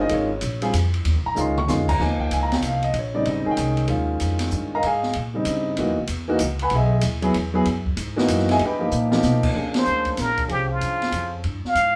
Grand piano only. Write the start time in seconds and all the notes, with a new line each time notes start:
0.01 D#5
0.10 D#3 G#3 C#4 F4
0.14 C#5
0.62 G3 C4 F4 G#4
1.26 A#5
1.35 D#3 G#3 C#4 F4
1.41 C6
1.58 C#6
1.67 D#3 G#3 C#4 F4 C6
1.89 A#5
1.98 F3 A#3 D#4 G4 G#5
2.20 G5
2.33 G#5
2.43 A#5
2.54 G5
2.67 F5
2.84 D#5
2.99 C#5
3.14 C#3 G3 C4 D#4 D5
3.30 D#5
3.45 D#3 G#3 C#4 G#4
3.51 G5
3.88 D#3 G#3 C#4 F4
4.75 A#4 D#5 F5 A#5
4.82 G5
4.86 G#4 D#5 F5 G#5
5.34 C#3 G3 C4 D#4
5.78 E3 A#3 D#4 F#4
6.28 E3 A#3 D#4 F#4
6.62 B4 F#5 G#5 B5
6.75 G#4 D#5 E5 G#5
7.22 F#3 B3 E4 G#4
7.54 F#3 B3 E4 G#4
8.16 E3 A#3 D#4 F#4
8.51 G#4 D#5 E5 G#5
8.64 G4 B4 D#5 G5
8.79 F3 A#3 D#4 G4
9.11 F3 A#3 D#4 G4
9.55 F3 A#3 C#4 D4 G#4
10.48 F3 C#4 G4 G#4 C5